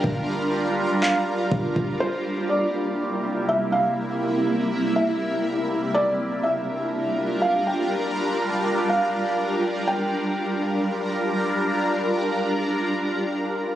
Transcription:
<<
  \new Staff \with { instrumentName = "Felt piano" } { \time 4/4 \key g \dorian \tempo 4 = 122 r2 f''4 r4 | c''4 d''2 e''8 f''8 | r2 e''4 r4 | d''4 e''2 f''8 g''8 |
r2 f''4 r4 | g''2. r4 | r1 | }
  \new Staff \with { instrumentName = "Ambient pad" } { \time 4/4 \key g \dorian << { <f' bes'>1 | <c bes e'>1~ | <c bes e'>1 | <g f' bes'>1~ |
<g f' bes'>1 | <g d' f' bes'>1~ | <g d' f' bes'>1 | } \\ { <g d'>1~ | <g d'>1~ | <g d'>1 | d'1~ |
d'1 | r1 | r1 | } >> }
  \new Staff \with { instrumentName = "808-style bass" } { \clef bass \time 4/4 \key g \dorian g,,4.~ g,,16 r4 r16 g,,8 g,,8 | r1 | r1 | r1 |
r1 | r1 | r1 | }
  \new DrumStaff \with { instrumentName = "Drums" } \drummode { \time 4/4 bd4 r4 hc4 bd8 bd8 | r4 r4 r4 r4 | r4 r4 r4 r4 | r4 r4 r4 r4 |
r4 r4 r4 r4 | r4 r4 r4 r4 | r4 r4 r4 r4 | }
>>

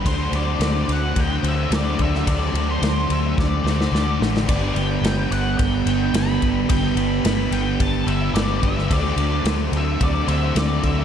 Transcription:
<<
  \new Staff \with { instrumentName = "Lead electric guitar" } { \time 4/4 \key g \major \tempo 4 = 108 c''8 d''8 d''8 fis''8 g''8 e''8 d''8 e''8 | d''8. c''8. e''8 d''4. r8 | d''8 g''4 fis''8 g''4 b''8. r16 | g''8 b''4 g''8 a''8 e''8 d''8 e''8 |
d''4 r8 e''8 d''8 e''8 d''8 e''8 | }
  \new Staff \with { instrumentName = "Overdriven electric guitar" } { \time 4/4 \key g \major <d fis a d' fis' c''>1~ | <d fis a d' fis' c''>1 | <g b d' g' b'>1~ | <g b d' g' b'>1 |
<d fis a d' fis' c''>1 | }
  \new Staff \with { instrumentName = "Overdriven electric guitar" } { \time 4/4 \key g \major <d fis a d' fis' c''>2~ <d fis a d' fis' c''>8 <d fis a d' fis' c''>8 <d fis a d' fis' c''>4 | <d fis a d' fis' c''>2~ <d fis a d' fis' c''>8 <d fis a d' fis' c''>8 <d fis a d' fis' c''>4 | <g b d' g' b'>2~ <g b d' g' b'>8 <g b d' g' b'>8 <g b d' g' b'>4 | <g b d' g' b'>2~ <g b d' g' b'>8 <g b d' g' b'>8 <g b d' g' b'>4 |
<d fis a d' fis' c''>2~ <d fis a d' fis' c''>8 <d fis a d' fis' c''>8 <d fis a d' fis' c''>4 | }
  \new Staff \with { instrumentName = "Distorted electric guitar" } { \clef bass \time 4/4 \key g \major <d a d'>8 <a d'>8 <d a d'>8 <a d'>4. <d a d'>8 <a d'>8 | <d a d'>8 <a d'>8 <d a d'>8 <a d'>4. <d a d'>8 <a d'>8 | <g, d g>8 <d g>8 <g, d g>8 <d g>4. <g, d g>8 <d g>8 | <g, d g>8 <d g>8 <g, d g>8 <d g>4. <g, d g>8 <d g>8 |
<d a d'>8 <a d'>8 <d a d'>8 <a d'>4. <d a d'>8 <a d'>8 | }
  \new Staff \with { instrumentName = "Fingered electric bass" } { \clef bass \time 4/4 \key g \major d,8 d,8 d,8 d,8 d,8 d,8 d,8 d,8 | d,8 d,8 d,8 d,8 d,8 d,8 d,8 a,,8 | g,,8 g,,8 g,,8 g,,8 g,,8 g,,8 g,,8 g,,8 | g,,8 g,,8 g,,8 g,,8 g,,8 g,,8 g,,8 g,,8 |
d,8 d,8 d,8 d,8 d,8 d,8 d,8 d,8 | }
  \new DrumStaff \with { instrumentName = "Drums" } \drummode { \time 4/4 <bd cymr>8 cymr8 <cymr sn>8 cymr8 <bd cymr>8 cymr8 <cymr sn>8 <bd cymr>16 sn16 | <bd cymr>8 cymr8 <cymr sn>8 cymr8 <bd sn>8 sn16 sn16 sn8 sn16 sn16 | <cymc bd cymr>8 cymr8 <cymr sn>8 cymr8 <bd cymr>8 cymr8 <cymr sn>8 <bd cymr>8 | <bd cymr>8 cymr8 <cymr sn>8 cymr8 <bd cymr>8 cymr8 <cymr sn>8 <bd cymr>16 sn16 |
<bd cymr>8 cymr8 <cymr sn>8 cymr8 <bd cymr>8 cymr8 <cymr sn>8 <bd cymr>8 | }
>>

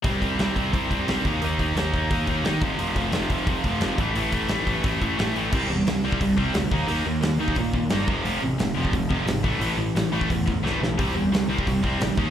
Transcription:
<<
  \new Staff \with { instrumentName = "Distorted electric guitar" } { \clef bass \time 4/4 \key a \minor \tempo 4 = 176 <c g c'>8 <c g c'>8 <c g c'>8 <c g c'>8 <c g c'>8 <c g c'>8 <c g c'>8 <ees bes ees'>8 | <ees bes ees'>8 <ees bes ees'>8 <ees bes ees'>8 <ees bes ees'>8 <ees bes ees'>8 <ees bes ees'>8 <ees bes ees'>8 <f, c f>8 | <f, c f>8 <f, c f>8 <f, c f>8 <f, c f>8 <f, c f>8 <f, c f>8 <f, c f>8 <a, e a>8 | <a, e a>8 <a, e a>8 <a, e a>8 <a, e a>8 <a, e a>8 <a, e a>8 <a, e a>8 <a, e a>8 |
<c g c'>8 <c g>8 <c g>8 <c g c'>8 <c g>8 <c g c'>8 <c g>8 <ees bes ees'>8 | <ees bes ees'>8 <ees bes>8 <ees bes>8 <ees bes ees'>8 <ees bes>8 <ees bes>8 <ees bes ees'>8 <f, c f>8 | <f, c f>8 <f, c>8 <f, c>8 <f, c f>8 <f, c>8 <f, c f>8 <f, c>8 <a, e a>8 | <a, e a>8 <a, e>8 <a, e>8 <a, e a>8 <a, e>8 <a, e>8 <a, e a>8 <a, e>8 |
<c g c'>8 <c g>8 <c g>8 <c g c'>8 <c g>8 <c g c'>8 <c g>8 <ees bes ees'>8 | }
  \new Staff \with { instrumentName = "Distorted electric guitar" } { \clef bass \time 4/4 \key a \minor <c g c'>8 <c g c'>8 <c g c'>8 <c g c'>8 <c g c'>8 <c g c'>8 <c g c'>8 <ees bes ees'>8 | <ees bes ees'>8 <ees bes ees'>8 <ees bes ees'>8 <ees bes ees'>8 <ees bes ees'>8 <ees bes ees'>8 <ees bes ees'>8 <f, c f>8 | <f, c f>8 <f, c f>8 <f, c f>8 <f, c f>8 <f, c f>8 <f, c f>8 <f, c f>8 <a, e a>8 | <a, e a>8 <a, e a>8 <a, e a>8 <a, e a>8 <a, e a>8 <a, e a>8 <a, e a>8 <a, e a>8 |
<c g c'>8 <c g>8 <c g>8 <c g c'>8 <c g>8 <c g c'>8 <c g>8 <ees bes ees'>8 | <ees bes ees'>8 <ees bes>8 <ees bes>8 <ees bes ees'>8 <ees bes>8 <ees bes>8 <ees bes ees'>8 <f, c f>8 | <f, c f>8 <f, c>8 <f, c>8 <f, c f>8 <f, c>8 <f, c f>8 <f, c>8 <a, e a>8 | <a, e a>8 <a, e>8 <a, e>8 <a, e a>8 <a, e>8 <a, e>8 <a, e a>8 <a, e>8 |
<c g c'>8 <c g>8 <c g>8 <c g c'>8 <c g>8 <c g c'>8 <c g>8 <ees bes ees'>8 | }
  \new Staff \with { instrumentName = "Picked electric bass" } { \clef bass \time 4/4 \key a \minor c,8 c,8 c,8 c,8 c,8 c,8 c,8 ees,8 | ees,4 ees,8 ees,8 ees,8 ees,8 ees8 f,,8 | f,,8 f,,8 f,,8 f,,8 f,,8 f,,8 f,,8 a,,8 | a,,4 a,,8 a,,8 a,,8 a,,8 a,8 a,,8 |
c,8 e,8 c,8 c,8 c,8 c,8 d,8 ees,8 | ees,8 ees,8 ees,8 ees,8 bes,4 g,8 f,,8 | f,,8 a,,8 f,,8 f,,8 f,,8 f,,8 aes,,8 a,,8 | a,,8 a,,8 a,,8 a,,8 e,4 c,8 b,,8 |
c,8 e,8 c,8 c,8 c,8 c,8 a,,8 ees,8 | }
  \new DrumStaff \with { instrumentName = "Drums" } \drummode { \time 4/4 <hho bd>8 <hho bd>8 <hho sn>8 <hho bd>8 <hho bd>8 <hho bd>8 <hho sn>8 <hho bd>8 | hho8 <hho bd>8 <hho sn>8 <hho bd>8 <hho bd>8 <hho bd>8 <hho sn>8 <hho bd>8 | hho8 <hho bd>8 <hho sn>8 <hho bd>8 <hho bd>8 <hho bd>8 <hho sn>8 <hho bd>8 | hho8 <hho bd>8 <hho sn>8 <hho bd>8 <hho bd>8 <hho bd>8 <hho sn>8 hho8 |
<cymc bd>4 <hho sn>8. bd16 <hho bd>8 bd8 <hho sn>8 bd8 | hho4 <hho sn>8. bd16 <hho bd>8 bd8 <hho sn>8 bd8 | hho4 <hho sn>8. bd16 <hho bd>8 bd8 <hho sn>8 bd8 | hho4 <hho sn>8. bd16 <hho bd>8 bd8 sn8 sn8 |
<hho bd>4 <hho sn>8. bd16 <hho bd>8 bd8 <hho sn>8 bd8 | }
>>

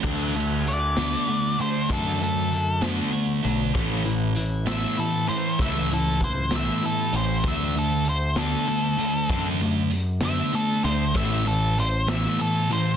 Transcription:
<<
  \new Staff \with { instrumentName = "Lead electric guitar" } { \time 6/8 \key d \lydian \tempo 4. = 65 r4 d''4. c''8 | a'8 a'4 r4. | r4. e''8 a'8 c''8 | e''8 a'8 c''8 e''8 a'8 c''8 |
e''8 a'8 c''8 a'4.~ | a'8 r4 e''8 a'8 c''8 | e''8 a'8 c''8 e''8 a'8 c''8 | }
  \new Staff \with { instrumentName = "Clean electric guitar" } { \time 6/8 \key d \lydian d8 a8 d8 a8 fis'8 d'8 | d8 a8 d8 a8 fis'8 d'8 | a,8 e8 e8 a8 e'8 cis'8 | a,8 e8 e8 a8 e'8 cis'8 |
r2. | r2. | r2. | }
  \new Staff \with { instrumentName = "Distorted electric guitar" } { \clef bass \time 6/8 \key d \lydian <d a d'>8 <d a>8 r8 <d a d'>8 <d a>8 <d a>8 | <d a d'>8 <d a>8 r8 <d a d'>8 <d a>8 <d a>8 | <a, e a>8 <a, e>8 r8 <a, e a>8 <a, e>8 <a, e>8 | <a, e a>8 <a, e>8 r8 <a, e a>8 <a, e>8 <a, e>8 |
<d a d'>8 <d a>8 r8 <d a d'>8 <d a>8 <d a>8 | <d a d'>8 <d a>8 r8 <d a d'>8 <d a>8 <d a>8 | <a, e a>8 <a, e>8 r8 <a, e a>8 <a, e>8 <a, e>8 | }
  \new Staff \with { instrumentName = "Distorted electric guitar" } { \clef bass \time 6/8 \key d \lydian <d a d'>8 <d a>8 r8 <d a d'>8 <d a>8 <d a>8 | <d a d'>8 <d a>8 r8 <d a d'>8 <d a>8 <d a>8 | <a, e a>8 <a, e>8 r8 <a, e a>8 <a, e>8 <a, e>8 | <a, e a>8 <a, e>8 r8 <a, e a>8 <a, e>8 <a, e>8 |
<d a d'>8 <d a>8 r8 <d a d'>8 <d a>8 <d a>8 | <d a d'>8 <d a>8 r8 <d a d'>8 <d a>8 <d a>8 | <a, e a>8 <a, e>8 r8 <a, e a>8 <a, e>8 <a, e>8 | }
  \new Staff \with { instrumentName = "Picked electric bass" } { \clef bass \time 6/8 \key d \lydian d,2 r4 | fis,2 r8 b,,8 | a,,2 r4 | cis,2 r8 a,,8 |
d,2 r4 | fis,2 r8 d,8 | a,,2 r4 | }
  \new DrumStaff \with { instrumentName = "Drums" } \drummode { \time 6/8 <cymc bd>8 hh8 hh8 <hh sn>8 hh8 hh8 | <hh bd>8 hh8 hh8 <hh sn>8 hh8 hh8 | <hh bd>8 hh8 hh8 <hh sn>8 hh8 hh8 | <hh bd>8 hh8 <hh bd>8 <hh sn>8 hh8 hh8 |
<hh bd>8 hh8 hh8 <hh sn>8 hh8 hh8 | <hh bd>8 hh8 hh8 <hh sn>8 hh8 hh8 | <hh bd>8 hh8 hh8 <hh sn>8 hh8 hh8 | }
>>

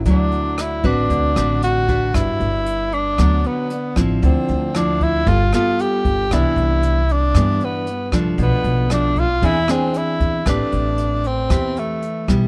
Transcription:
<<
  \new Staff \with { instrumentName = "Tenor saxophone" } { \time 4/4 \key d \major \tempo 4 = 115 d'4 e'8 d'4. fis'4 | \key g \major e'4. d'4 b4 r8 | c'4 d'8 e'8 f'8 f'8 g'4 | e'4. d'4 b4 r8 |
b4 d'8 f'8 e'8 bis8 e'4 | d'4. c'4 a4 r8 | }
  \new Staff \with { instrumentName = "Nylon-string guitar" } { \time 4/4 \key d \major << { <fis e'>4. <c' fis' b'>4 <c' fis' b'>4 <d' fis' b'>8~ | \key g \major <d' fis' b'>4 r4 <fis b d'>4 r8 <f c' e'>8~ | <f c' e'>4 <f c' e'>4 <b f' a'>8 <b f' a'>4. | <e b d'>4. r8 <e b d'>4 r8 <f a d'>8~ |
<f a d'>4 <f a d'>8 r8 <bis d' gis'>8 <bis d' gis'>4. | <c' g' b'>2 <c' g' b'>4 r8 <g b e'>8 | } \\ { d2 d2 | g,2 d2 | d2 g2 | c2 g,2 |
b,2 e2 | a2 e2 | } >> }
  \new Staff \with { instrumentName = "Upright bass" } { \clef bass \time 4/4 \key d \major d,4. a,,8 d,8 a,,4. | \key g \major g,,16 r16 g,,4. d,8 r4 a,,8 | d,16 r16 d,4. g,,8 r4 g,,8 | c,16 r16 c,4. g,8 r4 c,8 |
b,,16 r16 b,,4. e,8 r4 e,8 | a,,16 r16 a,,4. e,8 r4 b,,8 | }
  \new DrumStaff \with { instrumentName = "Drums" } \drummode { \time 4/4 <hh bd>8 hh8 <hh ss>8 <hh bd>8 <hh bd>8 <hh ss>8 hh8 <hh bd>8 | <hh bd ss>8 hh8 hh8 hh8 <hh bd ss>8 hh8 hh8 <hh bd ss>8 | <hh bd>8 hh8 <hh ss>8 <hh bd>8 <hh bd>8 <hh ss>8 hh8 <hh bd>8 | <hh bd ss>8 hh8 hh8 hh8 <hh bd ss>8 hh8 hh8 <hh bd ss>8 |
<hh bd>8 hh8 <hh ss>8 <hh bd>8 <hh bd>8 <hh ss>8 hh8 <hh bd>8 | <hh bd ss>8 hh8 hh8 hh8 <hh bd ss>8 hh8 hh8 <hh bd ss>8 | }
>>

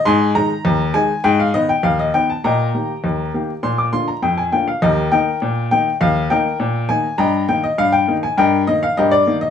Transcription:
<<
  \new Staff \with { instrumentName = "Upright piano" } { \time 2/4 \key ees \major \tempo 4 = 101 <ees'' aes'' c'''>8 bes''4 aes''8 | g''16 f''16 ees''16 g''16 f''16 ees''16 g''16 a''16 | <ees'' g'' bes''>2 | c'''16 d'''16 c'''16 bes''16 g''16 aes''16 g''16 f''16 |
<g' bes' ees''>8 <bes' ees'' g''>4 g''8 | f''8 <bes' ees'' g''>4 aes''8 | <ees'' g'' bes''>8 g''16 ees''16 f''16 g''8 aes''16 | <bes' ees'' g''>8 ees''16 f''16 <g' bes' ees''>16 d''8 ees''16 | }
  \new Staff \with { instrumentName = "Upright piano" } { \clef bass \time 2/4 \key ees \major aes,8 <ees aes ees'>8 ees,8 <ees aes ees'>8 | aes,8 <ees ces' ees'>8 ees,8 <ees ces' ees'>8 | bes,8 <ees bes g'>8 ees,8 <ees bes g'>8 | bes,8 <d bes f'>8 f,8 <d bes f'>8 |
ees,8 <ees bes ees'>8 bes,8 <ees bes ees'>8 | ees,8 <ees bes ees'>8 bes,8 <ees bes ees'>8 | g,8 <ees bes ees'>8 g,8 <ees bes ees'>8 | g,8 <ees bes ees'>8 g,8 <ees bes ees'>8 | }
>>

